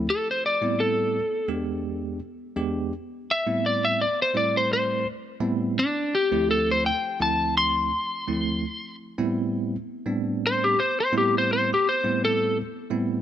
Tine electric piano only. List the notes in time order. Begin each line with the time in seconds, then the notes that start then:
0.62 A2 G3 B3 C4 E4
1.48 E2 G#3 B3 D4 G4
2.56 E2 G#3 B3 D4 G4
3.47 A2 G3 B3 C4 E4
4.34 A2 G3 A3 C4 E4
5.40 A2 G3 B3 C4 E4
6.32 D2 F3 A3 C4 E4
7.20 D2 F3 A3 C4 E4
8.28 D2 F3 A3 C4 E4
9.18 A2 G3 B3 C4 E4
10.06 A2 G3 B3 C4 D4
11.12 A2 G3 B3 C4 E4
12.04 A2 G3 B3 C4 E4
12.90 A2 G3 B3 C4 E4